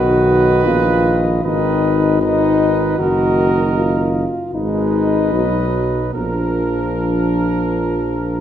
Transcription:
Already playing: B1 D#3 F#4 B4 D#5
0.67 A#1 F4
1.44 G#1 D#3 D#4 B4 D#5
2.21 D#3 D#4 B4 D#5
2.98 F#1 D#3 F#4 A#4 D#5
3.77 F4
4.54 G#1 G#3 D#4 B4 D#5
5.33 B1 F#3
6.13 A#1 F3 D4 A#4

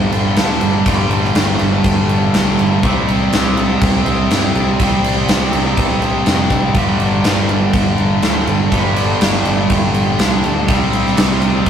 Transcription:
Already playing: G2 D3 G3
0.12 G1, crash
0.36 D2, snare, crash
0.61 G1, crash
0.86 G1 G2 D3 G3, kick, crash
1.11 crash
1.24 snare
1.35 G1, snare, crash
1.59 G1, crash
1.84 G1, kick, crash
2.09 crash
2.33 C2, snare, crash
2.59 G1, crash
2.83 C2 C3 G3 C4, kick, crash
3.08 C2, crash
3.32 C2, snare, crash
3.57 crash
3.81 C2, kick, crash
4.06 C2, crash
4.30 G2, snare, crash
4.54 C2, crash
4.79 C2 C3 G3 C4, kick, crash
5.04 crash
5.28 C2, snare, crash
5.53 C2, crash
5.77 C2, kick, crash
6.02 crash
6.26 F2, snare, crash
6.50 A1, kick, crash
6.74 G1 G2 D3 G3, kick, crash
6.99 G1, crash
7.24 G1, snare, crash
7.49 crash
7.74 G1, kick, crash
7.98 G1, crash
8.22 D2, snare, crash
8.47 G1, crash
8.71 G1 G2 D3 G3, kick, crash
8.96 crash
9.20 G1, snare, crash
9.45 G1, crash
9.70 G1, kick, crash
9.94 crash
10.19 C2, snare, crash
10.44 D2, crash
10.68 C2 C3 G3 C4, kick, crash
10.92 C2, crash
11.06 snare
11.17 C2, snare, crash
11.42 crash
11.66 kick, crash

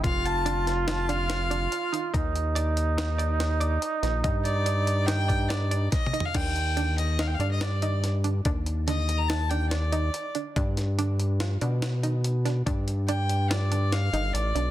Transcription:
0.04 F1 F4 F5, kick, closed hi-hat
0.25 A5, closed hi-hat
0.46 D4, closed hi-hat
0.67 snare, closed hi-hat
0.87 D#4 A5, snare, closed hi-hat
1.09 D4 F5, closed hi-hat
1.30 snare, closed hi-hat
1.51 D4, closed hi-hat
1.72 closed hi-hat
1.93 D#4, closed hi-hat
2.14 D#2 D#4, kick, closed hi-hat
2.36 closed hi-hat
2.55 D5, closed hi-hat
2.77 closed hi-hat
2.98 D#4, snare, closed hi-hat
3.18 D5, closed hi-hat
3.40 snare, closed hi-hat
3.60 D5, closed hi-hat
3.82 closed hi-hat
4.03 A#1 D#4, snare, closed hi-hat
4.24 G2 D#4, kick, closed hi-hat
4.45 D5, closed hi-hat
4.66 D5, closed hi-hat
4.87 closed hi-hat
5.06 D#4 G5, snare, closed hi-hat
5.28 D5, kick, closed hi-hat
5.49 D5, snare, closed hi-hat
5.71 D5, closed hi-hat
5.92 D#5, kick, snare, closed hi-hat
6.07 mid tom
6.13 D#4, closed hi-hat
6.20 floor tom
6.25 F5
6.34 D#2 D4 G5, kick, closed hi-hat, crash
6.56 closed hi-hat
6.77 D4, closed hi-hat
6.98 D#5, closed hi-hat
7.19 D#4 F5, snare, closed hi-hat
7.27 G5
7.34 F5
7.39 G2 D4, closed hi-hat
7.52 D#5
7.61 D5, snare, closed hi-hat
7.82 D#4, closed hi-hat
8.04 snare, closed hi-hat
8.24 D4, closed hi-hat
8.45 D#2 D4, kick, closed hi-hat
8.66 closed hi-hat
8.87 D3 D#5, closed hi-hat
9.09 closed hi-hat
9.18 A#5
9.28 D#4 A5, snare, closed hi-hat
9.49 D4 G5, closed hi-hat
9.70 D5, snare, closed hi-hat
9.92 D#4, closed hi-hat
10.14 closed hi-hat
10.35 D4, closed hi-hat
10.56 G2 D4, kick, closed hi-hat
10.77 snare, closed hi-hat
10.99 D4, closed hi-hat
11.20 closed hi-hat
11.40 F4, snare, closed hi-hat
11.61 B2 D4, closed hi-hat
11.82 snare, closed hi-hat
12.03 D#4, closed hi-hat
12.24 closed hi-hat
12.45 D4, snare, closed hi-hat
12.66 G2 D4, kick, closed hi-hat
12.88 closed hi-hat
13.08 D4 G5, closed hi-hat
13.29 closed hi-hat
13.50 F4 D5, snare, closed hi-hat
13.72 D4, closed hi-hat
13.92 F5, snare, closed hi-hat
14.13 G1 D#4, closed hi-hat
14.33 A1 D5, closed hi-hat
14.55 B1 D4, closed hi-hat

